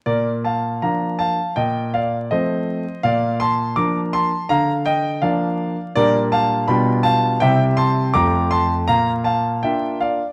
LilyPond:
<<
  \new Staff \with { instrumentName = "Grand piano" } { \time 2/4 \key bes \major \tempo 4 = 82 <bes' d''>8 <f'' a''>8 <f'' bes''>8 <f'' a''>8 | <ees'' g''>8 <d'' f''>8 <c'' ees''>4 | <d'' f''>8 <a'' c'''>8 <bes'' d'''>8 <a'' c'''>8 | <f'' bes''>8 <ees'' g''>8 <d'' f''>4 |
\key bes \lydian <bes' d''>8 <f'' a''>8 <g'' b''>8 <f'' a''>8 | <e'' g''>8 <a'' c'''>8 <bes'' d'''>8 <a'' c'''>8 | <f'' bes''>8 <f'' a''>8 <e'' g''>8 <d'' f''>8 | }
  \new Staff \with { instrumentName = "Grand piano" } { \time 2/4 \key bes \major bes,4 <f bes d'>4 | bes,4 <f a c'>4 | bes,4 <f bes d'>4 | d4 <f bes d'>4 |
\key bes \lydian <bes, g bes d'>4 <b, g d' f'>4 | <c g c' e'>4 <f, a c' f'>4 | bes,4 <bes d' f'>4 | }
>>